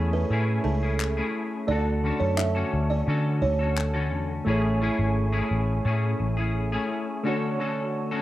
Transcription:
Already playing: E2 A3 C#4 E4 G#4 C#5
0.13 B4
0.30 A2 A3 C#4 E4 G#4
0.64 C#2 A4
0.83 C#4 E4 G#4
1.00 clap
1.17 A3 C#4 E4 G#4
1.67 D2 D3 A3 D4 F4 F#4 D5
1.71 A4
1.77 F#4
2.03 D3 C#4 F#4 A4
2.20 F#2 C#5
2.37 E5, clap
2.55 D3 C#4 F#4 A4
2.74 D2
2.90 D5
3.07 D3 C#4 F#4 A4
3.42 D2 C#5
3.59 C#4 F#4 A4
3.78 clap
3.94 D3 C#4 F#4 A4
4.13 E2
4.45 A1 A3 C#4 E4 G#4
4.50 C#5
4.81 A3 C#4 E4 G#4
4.99 G#1
5.33 A3 C#4 E4 G#4
5.51 A1
5.85 A2 A3 C#4 E4 G#4
6.20 A1
6.37 C#4 E4 G#4
6.72 A3 C#4 E4 G#4
7.23 D3 A3 C#4 D4 F#4 A4
7.28 C#5
7.59 D3 C#4 F#4 A4
8.11 D3 C#4 F#4 A4

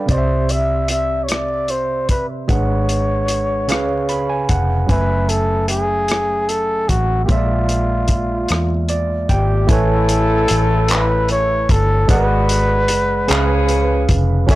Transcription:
Already playing: G3 D4 D5 G5 B5
0.06 C2 C3 C4 G4, kick, closed hi-hat
0.10 C5 D5 D#5
0.18 E5
0.49 E5, closed hi-hat
0.88 E5, closed hi-hat
1.24 C#5
1.29 D5, cross-stick, closed hi-hat
1.68 C5, closed hi-hat
2.09 B4, kick, closed hi-hat
2.48 G#1 G#3 D4 G#4 B4 C#5 F#5, kick, closed hi-hat
2.89 closed hi-hat
3.28 closed hi-hat
3.68 C#2 C#3 C#4 G#4 B4 F5, closed hi-hat
3.72 cross-stick
4.09 B5, closed hi-hat
4.29 G#5
4.49 F1 F#5, kick, closed hi-hat
4.87 F#1 F#3 C#4 B4 G#5, kick, closed hi-hat
4.91 A3 E5
5.29 A4, closed hi-hat
5.68 G#4, closed hi-hat
6.08 cross-stick, closed hi-hat
6.49 A4, closed hi-hat
6.89 A1 F#4, kick, closed hi-hat
7.24 A#3 F4 G4
7.29 A#1 G#3 F4 C#5 E5, kick, closed hi-hat
7.37 D5
7.69 closed hi-hat
8.08 kick, closed hi-hat
8.48 E2, cross-stick, closed hi-hat
8.89 D5, closed hi-hat
9.29 G#1 G4 G5, kick, closed hi-hat
9.67 A1 C#3 A3 E4 B4 G#5, kick, closed hi-hat
9.72 A4 C#5
10.09 closed hi-hat
10.48 A1, closed hi-hat
10.88 B4, clap, closed hi-hat
11.29 C#5, closed hi-hat
11.69 G1 A4, kick, closed hi-hat
12.08 G#1 D3 G#3 B3 F#4 G#4 B4 D5 F#5, kick, closed hi-hat
12.49 closed hi-hat
12.88 F#1, closed hi-hat
13.28 C#2 C#3 F3 C#4 G#4 B4 F5, clap, closed hi-hat
13.69 closed hi-hat
14.09 F1, kick, closed hi-hat
14.46 F#1 F#3 C#4 E4 A4 G#5, kick, closed hi-hat
14.51 A4 C#5 E5

